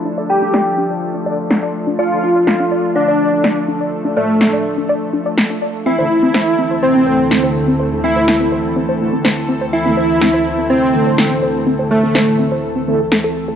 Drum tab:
SD |--o---o-|--o---o-|--o---o-|--o---o-|

SD |--o---o-|--o---o-|--o---o-|